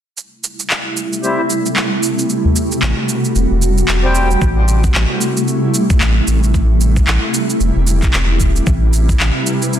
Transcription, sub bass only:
2.83 2.93 A1 loud
3.35 3.46 E1 medium
3.51 3.83 E1 medium
3.88 4.36 E1 medium
4.42 4.89 A1 medium
4.95 5.06 A1 loud
6.01 6.21 A1 loud
6.27 7.02 A1 medium
7.07 7.18 A1 loud
7.60 7.71 E1 medium
7.76 8.08 E1 medium
8.13 8.61 E1 medium
8.67 9.14 A1 medium
9.20 9.30 A1 loud

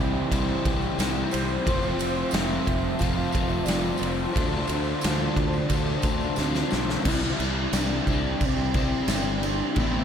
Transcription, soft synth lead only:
1.32 2.35 C5 loud
2.33 3.01 E5 loud
3.00 3.50 F5 loud
3.49 3.66 E5 medium
3.64 3.99 D5 medium
3.98 6.36 C5 medium
6.39 7.09 C4 loud
7.07 7.76 E4 loud
7.75 8.08 D4 loud
8.10 8.46 D4 loud
8.44 9.12 C4 loud
9.11 9.80 D4 loud
9.78 10.04 B3 loud

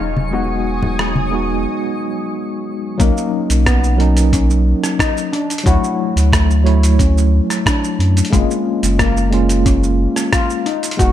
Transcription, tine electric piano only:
0.31 1.28 G#3 medium
0.31 1.29 B3 medium
0.31 1.29 D#4 medium
0.31 1.30 F#4 medium
1.31 1.65 G#3 medium
1.31 1.66 B3 medium
1.31 1.66 D#4 medium
1.31 1.67 F#4 medium
2.98 3.95 F#3 medium
2.98 3.95 A#3 medium
2.98 3.96 C#4 medium
2.98 3.96 D#4 loud
3.97 5.30 F#3 medium
3.97 5.31 C#4 medium
3.97 5.32 D#4 medium
3.97 5.30 A#4 medium
5.64 6.61 F#3 medium
5.64 6.62 A3 medium
5.64 6.63 E4 loud
5.64 6.62 C#5 medium
6.64 8.28 F#3 medium
6.64 8.28 A3 medium
6.64 8.29 E4 medium
6.64 8.29 C#5 medium
8.30 9.28 G#3 medium
8.30 9.28 A#3 medium
8.30 9.29 C#4 medium
8.30 9.29 F4 loud
9.30 10.63 G#3 medium
9.30 10.64 A#3 medium
9.30 10.64 C#4 medium
9.30 10.65 F4 medium
10.97 11.12 G#3 medium
10.97 11.12 B3 medium
10.97 11.12 D#4 medium
10.97 11.12 F#4 loud

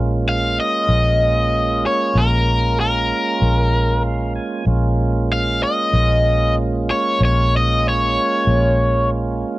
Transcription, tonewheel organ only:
0.00 4.63 G#3 medium
0.00 4.64 A#3 medium
0.00 4.65 C#4 medium
0.00 4.65 F4 medium
4.03 4.34 F5 medium
4.36 4.65 G#5 medium
4.64 9.59 G#3 medium
4.64 9.59 A#3 medium
4.64 9.59 C#4 medium
4.64 9.59 F4 medium

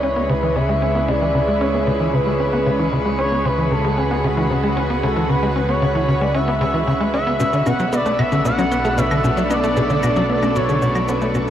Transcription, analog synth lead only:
0.03 0.31 C#5 loud
0.29 0.57 B4 loud
0.55 1.10 E5 loud
1.08 1.62 D5 loud
1.61 2.15 C#5 loud
2.14 2.39 B4 loud
2.40 2.89 B4 medium
3.19 3.47 C#5 loud
3.46 3.73 B4 loud
3.71 3.99 A4 loud
3.98 4.77 G#4 medium
5.04 5.28 A4 medium
5.30 5.71 B4 loud
5.69 6.23 C#5 loud
6.22 6.36 D5 loud
6.35 7.13 E5 loud
7.14 7.68 E5 loud
7.66 7.92 F#5 loud
7.93 8.17 D5 loud
8.19 8.43 E5 loud
8.45 8.99 F#5 loud
8.98 9.50 E5 loud
9.50 10.57 D5 loud
10.56 11.10 C#5 loud
11.08 11.48 B4 medium

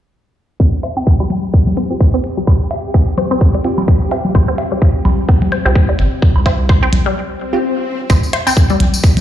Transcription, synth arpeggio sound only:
0.60 0.64 C4 medium
0.83 0.90 C5 medium
0.97 1.00 C4 medium
1.20 1.25 G3 medium
1.77 1.81 C4 medium
2.01 2.07 C5 medium
2.14 2.17 C4 medium
2.37 2.42 G3 medium
2.94 2.99 C4 medium
3.18 3.24 C5 medium
3.31 3.34 C4 loud
3.54 3.59 G3 medium
4.11 4.16 C4 medium
4.35 4.41 C5 medium
4.48 4.52 C4 medium
4.72 4.77 G3 medium
5.29 5.33 C4 medium
5.52 5.59 C5 medium
5.65 5.69 C4 loud
5.89 5.94 G3 medium
6.46 6.50 C4 medium
6.69 6.76 C5 medium
6.83 6.86 C4 loud
7.06 7.11 G3 medium
8.10 8.14 C4 medium
8.33 8.40 C5 medium
8.47 8.50 C4 loud
8.70 8.75 G3 medium

